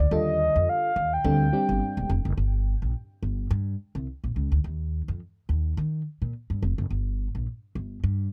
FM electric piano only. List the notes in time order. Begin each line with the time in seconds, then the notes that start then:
0.11 D3 G3 F4 A4
1.24 G3 C4 D4 A4
1.52 G3 C4 D4 G4